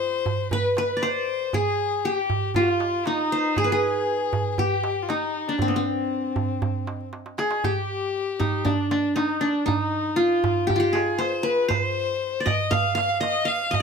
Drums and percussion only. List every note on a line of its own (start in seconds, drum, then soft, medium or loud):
0.26 darbuka dum medium
0.51 darbuka dum medium
0.77 darbuka tek medium
1.02 darbuka tek medium
1.28 darbuka ka soft
1.53 darbuka dum medium
1.66 darbuka ka soft
1.79 darbuka ka soft
2.30 darbuka dum medium
2.55 darbuka dum medium
2.80 darbuka tek medium
3.06 darbuka tek medium
3.32 darbuka ka soft
3.57 darbuka dum medium
4.33 darbuka dum medium
4.58 darbuka dum medium
4.84 darbuka tek medium
5.09 darbuka tek medium
5.34 darbuka ka soft
5.59 darbuka dum medium
5.72 darbuka ka soft
5.85 darbuka ka soft
6.11 darbuka ka soft
6.36 darbuka dum medium
6.49 darbuka ka soft
6.62 darbuka dum medium
6.87 darbuka tek medium
7.01 darbuka ka soft
7.13 darbuka tek medium
7.26 darbuka ka medium
7.38 darbuka tek medium
7.51 darbuka ka medium
7.64 darbuka dum medium
7.77 darbuka ka soft
8.40 darbuka dum medium
8.53 darbuka ka soft
8.66 darbuka dum medium
8.91 darbuka tek medium
9.04 darbuka ka soft
9.17 darbuka tek medium
9.30 darbuka ka soft
9.43 darbuka ka soft
9.68 darbuka dum medium
9.81 darbuka ka soft
10.44 darbuka dum loud
10.57 darbuka ka soft
10.70 darbuka dum loud
10.95 darbuka tek medium
11.20 darbuka tek medium
11.32 darbuka ka soft
11.45 darbuka ka soft
11.70 darbuka dum medium
11.84 darbuka ka soft
12.47 darbuka dum loud
12.59 darbuka ka soft
12.72 darbuka dum medium
12.98 darbuka tek medium
13.10 darbuka ka soft
13.23 darbuka tek medium
13.35 darbuka ka soft
13.48 darbuka ka soft
13.73 darbuka dum medium